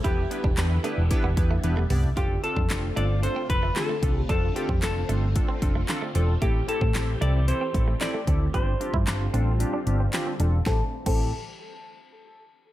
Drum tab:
CC |----------------|----------------|----------------|----------------|
HH |x-x-x-x-x-x-x-o-|x-x-x-x-x-x-x-x-|x-x-x-x-x-x-x-x-|x-x-x-x-x-x-x-x-|
CP |----x-----------|----x-------x---|----x-------x---|----x-------x---|
SD |----o-----------|----o-------o---|----o-------o---|----o-------o---|
T1 |------------o---|----------------|----------------|----------------|
T2 |--------------o-|----------------|----------------|----------------|
FT |---------------o|----------------|----------------|----------------|
BD |o--o----o-o-----|o--o------o---o-|o--o----o-o-----|o--o------o---o-|

CC |----------------|---x------------|
HH |x-x-x-x-x-x-x-x-|----------------|
CP |----x-------x---|----------------|
SD |----o-------o---|o---------------|
T1 |----------------|----------------|
T2 |----------------|----------------|
FT |----------------|----------------|
BD |o--o------------|o--o------------|